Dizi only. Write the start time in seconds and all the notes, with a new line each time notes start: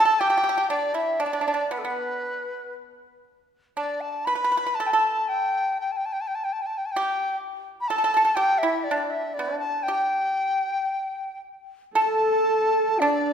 Already playing: A5
0.20 G5
0.70 D5
0.94 E5
1.21 D5
1.72 B4
1.78 A4
1.84 B4
3.77 D5
4.01 A5
4.25 B5
4.75 A5
4.87 G5 A5
5.28 G5
5.81 G5
5.92 A5
5.97 G5
6.06 A5
6.13 G5
6.21 A5
6.27 G5
6.35 A5
6.44 G5
6.53 A5
6.62 G5
6.66 A5
6.78 G5
6.86 A5
6.92 G5
7.81 B5
7.88 A5
8.35 G5
8.58 E5
8.84 D5
9.10 E5
9.34 D5
9.59 A5
9.83 G5
11.95 A5
13.00 D5